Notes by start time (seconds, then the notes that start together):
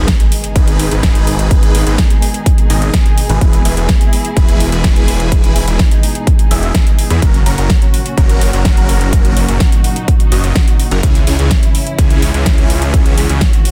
Already playing: B2 D#3 G#3 D#4 G#4 B4, sub drop
0.08 kick, snare, closed hi-hat
0.20 closed hi-hat
0.32 open hi-hat
0.44 closed hi-hat
0.56 G#1 D#4 G#4 B4, kick, closed hi-hat
0.68 closed hi-hat
0.80 open hi-hat
0.91 G#1 D#4 G#4 B4, closed hi-hat
1.03 kick, snare, closed hi-hat
1.15 closed hi-hat
1.27 open hi-hat
1.39 closed hi-hat
1.51 kick, closed hi-hat
1.63 closed hi-hat
1.75 G#1 D#4 G#4 B4, open hi-hat
1.87 G#1 D#4 G#4 B4, closed hi-hat
1.98 kick, snare, closed hi-hat
2.10 closed hi-hat
2.22 open hi-hat
2.34 closed hi-hat
2.46 kick, closed hi-hat
2.58 closed hi-hat
2.70 G#1 D#4 G#4 D#5, open hi-hat
2.82 closed hi-hat
2.94 kick, snare, closed hi-hat
3.06 closed hi-hat
3.18 open hi-hat
3.29 G#1 D#4 G#4 B4, closed hi-hat
3.41 E1 E3 E4 G#4 B4, kick, closed hi-hat
3.53 closed hi-hat
3.65 E1 E4 G#4 B4, open hi-hat
3.77 E1 E4 G#4 B4, closed hi-hat
3.89 kick, snare, closed hi-hat
4.01 closed hi-hat
4.13 open hi-hat
4.25 closed hi-hat
4.37 E1 E4 G#4 B4, kick, closed hi-hat
4.49 closed hi-hat
4.60 open hi-hat
4.72 E1 E4 G#4 B4, closed hi-hat
4.84 kick, snare, closed hi-hat
4.96 closed hi-hat
5.08 open hi-hat
5.20 closed hi-hat
5.32 D#4, kick, closed hi-hat
5.44 closed hi-hat
5.56 E1 E4 G#4 B4, open hi-hat
5.68 E1 E4 G#4 B4, closed hi-hat
5.79 kick, snare, closed hi-hat
5.91 closed hi-hat
6.03 open hi-hat
6.15 closed hi-hat
6.27 kick, closed hi-hat
6.39 closed hi-hat
6.51 E1 E4 G#4 E5, open hi-hat
6.63 closed hi-hat
6.74 kick, snare, closed hi-hat
6.87 closed hi-hat
6.99 open hi-hat
7.10 E2 E4 G#4 B4, closed hi-hat
7.22 F#1 A#2 C#3 F#3 C#4 F#4 A#4, kick, closed hi-hat
7.34 closed hi-hat
7.46 F#1 C#4 F#4 A#4, open hi-hat
7.58 F#1 C#4 F#4 A#4, closed hi-hat
7.70 kick, snare, closed hi-hat
7.82 closed hi-hat
7.94 open hi-hat
8.06 closed hi-hat
8.18 F#1 C#4 F#4 A#4, kick, closed hi-hat
8.29 closed hi-hat
8.41 open hi-hat
8.53 F#1 C#4 F#4 A#4, closed hi-hat
8.65 kick, snare, closed hi-hat
8.77 closed hi-hat
8.89 open hi-hat
9.01 closed hi-hat
9.13 D#4, kick, closed hi-hat
9.25 closed hi-hat
9.37 F#1 C#4 F#4 A#4, open hi-hat
9.49 F#1 C#4 F#4 A#4, closed hi-hat
9.60 kick, snare, closed hi-hat
9.72 closed hi-hat
9.84 open hi-hat
9.96 closed hi-hat
10.08 kick, closed hi-hat
10.20 closed hi-hat
10.32 F#1 C#4 F#4 D#5, open hi-hat
10.44 closed hi-hat
10.55 kick, snare, closed hi-hat
10.68 closed hi-hat
10.80 open hi-hat
10.91 F#1 C#4 F#4 A#4, closed hi-hat
11.03 C#2 G#2 E3 C#4 E4 G#4, kick, closed hi-hat
11.15 closed hi-hat
11.27 C#2 C#4 E4 G#4, open hi-hat
11.39 C#2 C#4 E4 G#4, closed hi-hat
11.51 kick, snare, closed hi-hat
11.63 closed hi-hat
11.75 open hi-hat
11.87 closed hi-hat
11.98 C#2 C#4 E4 G#4, kick, closed hi-hat
12.10 closed hi-hat
12.22 open hi-hat
12.34 C#2 C#4 E4 G#4, closed hi-hat
12.46 kick, snare, closed hi-hat
12.58 closed hi-hat
12.70 open hi-hat
12.82 closed hi-hat
12.94 F#4, kick, closed hi-hat
13.06 closed hi-hat
13.18 C#2 C#4 E4 G#4, open hi-hat
13.29 C#2 C#4 E4 G#4, closed hi-hat
13.41 kick, snare, closed hi-hat
13.53 closed hi-hat
13.65 open hi-hat